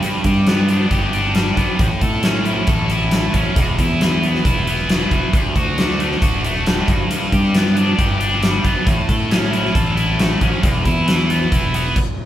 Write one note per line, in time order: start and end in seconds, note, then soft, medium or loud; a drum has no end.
0.03 1.14 G2 medium
0.03 closed hi-hat medium
0.24 0.84 G2 medium
0.24 0.91 G4 medium
0.24 kick medium
0.24 closed hi-hat medium
0.47 1.56 B3 medium
0.47 snare loud
0.47 closed hi-hat medium
0.69 1.12 D4 medium
0.69 closed hi-hat medium
0.91 1.51 G1 medium
0.91 1.80 G4 medium
0.91 kick medium
0.91 closed hi-hat medium
1.13 1.80 D4 medium
1.13 closed hi-hat medium
1.35 1.79 G3 medium
1.35 snare loud
1.35 closed hi-hat medium
1.57 1.67 G1 medium
1.57 1.79 B3 medium
1.57 kick medium
1.57 closed hi-hat medium
1.79 1.90 A1 medium
1.79 2.90 A2 medium
1.79 kick loud
1.79 closed hi-hat medium
2.01 2.61 A2 medium
2.01 2.68 A4 medium
2.01 kick medium
2.01 closed hi-hat medium
2.23 3.34 C#4 medium
2.23 snare loud
2.23 closed hi-hat medium
2.46 2.90 E4 medium
2.46 closed hi-hat medium
2.67 3.27 A1 medium
2.67 3.57 A4 medium
2.67 kick loud
2.67 closed hi-hat medium
2.90 3.57 E4 medium
2.90 closed hi-hat medium
3.11 3.57 A3 medium
3.11 snare loud
3.11 closed hi-hat medium
3.34 3.44 A1 medium
3.34 3.57 C#4 medium
3.34 kick medium
3.34 closed hi-hat medium
3.56 3.76 E1 loud
3.56 4.68 E2 medium
3.56 kick loud
3.56 closed hi-hat medium
3.79 4.38 E2 medium
3.79 4.45 E4 medium
3.79 kick medium
3.79 closed hi-hat medium
4.01 5.11 E3 medium
4.01 snare loud
4.01 closed hi-hat medium
4.23 4.67 B3 medium
4.23 closed hi-hat medium
4.35 snare soft
4.45 5.05 E1 medium
4.45 5.34 E4 medium
4.45 kick loud
4.45 closed hi-hat medium
4.67 5.34 B3 medium
4.67 closed hi-hat medium
4.89 5.34 B2 medium
4.89 snare loud
4.89 closed hi-hat medium
5.11 5.21 E1 medium
5.11 5.34 E3 medium
5.11 kick medium
5.11 closed hi-hat medium
5.33 5.43 D1 medium
5.33 6.44 D2 medium
5.33 kick loud
5.33 closed hi-hat medium
5.56 6.15 D2 medium
5.56 6.21 F#4 medium
5.56 kick medium
5.56 closed hi-hat medium
5.78 6.88 D3 medium
5.78 snare loud
5.78 closed hi-hat medium
5.90 snare soft
6.00 6.43 A3 medium
6.00 closed hi-hat medium
6.12 snare soft
6.22 6.81 D1 loud
6.22 6.88 F#4 medium
6.22 kick loud
6.22 closed hi-hat medium
6.44 6.88 A3 medium
6.44 closed hi-hat medium
6.66 6.88 A2 medium
6.66 snare loud
6.66 closed hi-hat medium
6.88 7.08 G1 medium
6.88 7.10 G2 medium
6.88 kick loud
6.88 closed hi-hat medium
7.11 8.21 G2 medium
7.11 closed hi-hat medium
7.32 7.92 G2 medium
7.32 7.98 G4 medium
7.32 kick medium
7.32 closed hi-hat medium
7.55 8.64 B3 medium
7.55 snare loud
7.55 closed hi-hat medium
7.67 snare soft
7.77 8.20 D4 medium
7.77 closed hi-hat medium
7.99 8.58 G1 medium
7.99 8.88 G4 medium
7.99 kick loud
7.99 closed hi-hat medium
8.21 8.87 D4 medium
8.21 closed hi-hat medium
8.43 8.87 G3 medium
8.43 snare loud
8.43 closed hi-hat medium
8.64 8.75 G1 medium
8.64 8.87 B3 medium
8.64 kick medium
8.64 closed hi-hat medium
8.87 8.97 A1 medium
8.87 9.97 A2 medium
8.87 kick loud
8.87 closed hi-hat medium
9.09 9.68 A2 medium
9.09 9.74 A4 medium
9.09 kick medium
9.09 closed hi-hat medium
9.31 10.40 C#4 medium
9.31 snare loud
9.31 closed hi-hat medium
9.43 snare soft
9.52 9.95 E4 medium
9.52 closed hi-hat medium
9.66 snare soft
9.75 10.35 A1 medium
9.75 10.63 A4 medium
9.75 kick loud
9.75 closed hi-hat medium
9.96 10.63 E4 medium
9.96 closed hi-hat medium
10.18 10.63 A3 medium
10.18 snare loud
10.18 closed hi-hat medium
10.41 10.51 A1 medium
10.41 10.63 C#4 medium
10.41 kick medium
10.41 closed hi-hat medium
10.63 10.83 E1 loud
10.63 11.74 E2 medium
10.63 kick loud
10.63 closed hi-hat medium
10.85 11.45 E2 medium
10.85 11.51 E4 medium
10.85 kick medium
10.85 closed hi-hat medium
11.08 11.96 E3 medium
11.08 snare loud
11.08 closed hi-hat medium
11.20 snare soft
11.30 11.73 B3 medium
11.30 closed hi-hat medium
11.52 11.91 E1 medium
11.52 11.96 E4 medium
11.52 kick loud
11.52 closed hi-hat medium
11.74 11.96 B3 medium
11.74 closed hi-hat medium
11.96 kick loud
11.96 crash medium